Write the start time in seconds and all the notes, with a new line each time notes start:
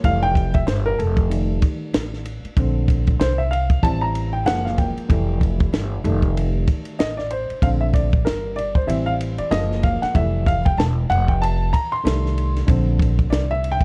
0.04 F1 E3 G3 A3 F5, kick, ride
0.23 G5
0.35 kick, ride
0.54 E5, kick, ride
0.67 G1 C5, snare, hi-hat pedal, ride
0.86 A#4
0.99 F1 A4, ride
1.17 kick, ride
1.30 D#3 G3 A3, ride
1.62 kick, ride
1.94 A1, snare, hi-hat pedal, ride
2.13 snare
2.25 ride
2.44 muted upright bass stroke, ride
2.56 A#1 D3 A3 C4, kick, ride
2.88 kick, ride
3.07 kick, ride
3.20 C2 C5, snare, hi-hat pedal, ride
3.38 E5
3.51 F5, ride
3.70 kick, ride
3.83 A1 E3 G3 C4 A5, kick, ride
4.01 A#5
4.15 ride
4.33 G5
4.45 F#1 F3 G#3 A#3 F#5, snare, hi-hat pedal, ride
4.65 F5, snare
4.78 G5, kick, ride
4.96 muted upright bass stroke, ride
5.09 F1 E3 G3 A3, kick, ride
5.41 kick, ride
5.60 kick, ride
5.73 G1, snare, hi-hat pedal, ride
6.04 F1 D#3 G3 A3, ride
6.22 kick, ride
6.37 ride
6.67 kick, ride
6.85 ride
6.99 A1 D#5, snare, hi-hat pedal, ride
7.17 D5, snare
7.30 C5, ride
7.50 muted upright bass stroke, ride
7.62 A#1 D3 A3 C4 F5, kick, ride
7.81 E5
7.93 D5, kick, ride
8.13 kick
8.25 G1 A#4, snare, hi-hat pedal, ride
8.56 D5, ride
8.75 C5, kick
8.87 A1 E3 G3 C4 E5, ride
9.06 F5
9.21 ride
9.38 D5, muted upright bass stroke, ride
9.51 F#1 F3 G#3 A#3 D#5, snare, hi-hat pedal, ride
9.72 snare
9.83 F5, kick, ride
10.02 F#5, muted upright bass stroke, snare, ride
10.14 F1 E3 G3 A3 E5, kick, ride
10.46 F5, kick, ride
10.65 G5, kick, ride
10.77 E1 A5, snare, hi-hat pedal, ride
11.10 F1 F#5, ride
11.28 G5, kick
11.42 A5, ride
11.73 A#5, kick, ride
11.92 C6
12.03 C2 D#3 G3 A3, snare, hi-hat pedal, ride
12.26 snare
12.38 ride
12.56 snare, ride
12.67 A#1 D3 A3 C4, kick, ride
12.99 kick, ride
13.19 kick, ride
13.30 C2 D5, snare, hi-hat pedal, ride
13.51 E5
13.64 ride
13.72 G5
13.81 kick, ride